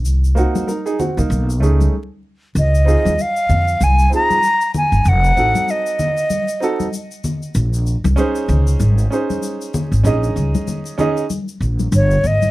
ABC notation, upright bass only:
X:1
M:4/4
L:1/16
Q:"Swing 16ths" 1/4=96
K:Bbm
V:1 name="Upright bass" clef=bass
C,,3 z4 C,, =B,,,2 ^C,,2 z4 | D,,3 E,, z2 F,,2 C,,2 z4 z =G,,, | F,,,2 =A,,, z12 z | B,,,3 C,, z2 D,,2 A,,,2 z4 z A,,, |
B,,,2 D,, z6 z B,,,2 =G,,,2 A,,,2 |]